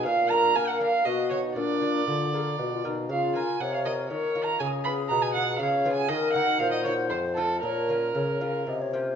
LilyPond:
<<
  \new Staff \with { instrumentName = "Violin" } { \time 3/4 \key bes \phrygian \tempo 4 = 119 f''8 bes''8 aes''16 ges''16 f''8 dis''8 des''8 | d''2~ d''8 r8 | \key bes \minor f''8 aes''8 ges''16 f''16 ees''8 \tuplet 3/2 { des''4 bes''8 } | aes''8 ces'''8 bes''16 aes''16 ges''8 \tuplet 3/2 { f''4 aes''8 } |
ees''8 ges''8 f''16 ees''16 des''8 c''8 a'8 | bes'2 r4 | }
  \new Staff \with { instrumentName = "Flute" } { \time 3/4 \key bes \phrygian bes'2 fis'4 | d'4 f'8 aes'8 ges'16 f'16 ees'8 | \key bes \minor f'4 des''4 bes'4 | aes'2 des''4 |
bes'4 c''2 | des''4 des''8 f''8 ees''16 des''16 c''8 | }
  \new Staff \with { instrumentName = "Lute" } { \time 3/4 \key bes \phrygian r8 <bes d' bes'>4 <bes d' bes'>8 r8 <dis' fis'>8 | r8 <bes f' bes'>4 <bes f' bes'>4 <bes f' bes'>8 | \key bes \minor r8 <bes f' bes'>4 <bes f' bes'>4 <bes f' bes'>8 | r8 <ces' f' aes'>4 <ces' f' aes'>4 <ces' f' aes'>8 |
r8 <bes ees' ges'>4 <bes ees' ges'>8 r8 <a c' f'>8 | r8 <bes des' f'>4 <bes des' f'>4 <bes des' f'>8 | }
  \new Staff \with { instrumentName = "Lute" } { \clef bass \time 3/4 \key bes \phrygian bes,4 bes4 b,4 | bes,4 d4 ces4 | \key bes \minor des8 r8 c4 ees4 | des4 ces4 des4 |
ees4 bes,4 f,4 | bes,4 des4 c4 | }
  \new Staff \with { instrumentName = "Bassoon" } { \clef bass \time 3/4 \key bes \phrygian bes,4 bes4 b,4 | bes,4 d4 ces4 | \key bes \minor des8 r8 c4 ees4 | des4 ces4 des4 |
ees4 bes,4 f,4 | bes,4 des4 c4 | }
>>